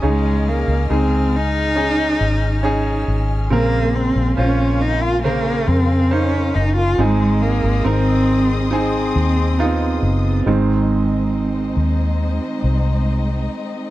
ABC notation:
X:1
M:4/4
L:1/16
Q:1/4=69
K:Abmix
V:1 name="String section"
[Aeaf']16 | [Bfc']16 | [Aec'e']16 | [A,CEce]16 |]
V:2 name="Grand piano"
[DEA]4 [A,EA]4 [DEA]4 [DEA]4 | [D,CB]4 [DFc]4 [D,Bc]4 [DEc]4 | [CEA]4 [CEB]4 [CEA]4 [_C=CEF]4 | z16 |]
V:3 name="Grand piano" clef=bass
D,6 z8 z2 | B,,6 z8 z2 | A,,6 z8 z2 | [E,A,C]2 z12 z2 |]
V:4 name="Cello"
A,2 B,2 C2 E8 z2 | B,2 C2 D2 E F B,2 C2 D2 E F | A,2 B,2 C4 C6 z2 | z16 |]
V:5 name="Fingered electric bass" clef=bass
D,,3 D,, D,,6 A,,,4 A,,,2 | B,,,3 B,,, B,,,6 F,,4 G,,,2 | A,,,3 A,,, A,,,6 E,,4 G,,,2 | A,,,6 E,,3 z C,,4 z2 |]